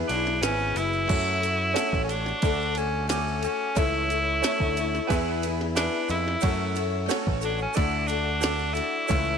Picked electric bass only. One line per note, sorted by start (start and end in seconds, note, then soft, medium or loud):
0.09 0.39 B1 medium
0.42 0.72 G#1 loud
0.75 1.06 F#1 medium
1.10 1.74 F#2 loud
1.93 2.31 A1 medium
2.43 3.46 D2 loud
3.77 4.41 C#2 loud
4.60 4.99 D2 medium
5.10 5.87 E2 loud
6.09 6.35 F2 medium
6.43 7.07 F#2 loud
7.27 7.65 A1 medium
7.77 8.79 D2 loud
9.10 9.38 C#2 loud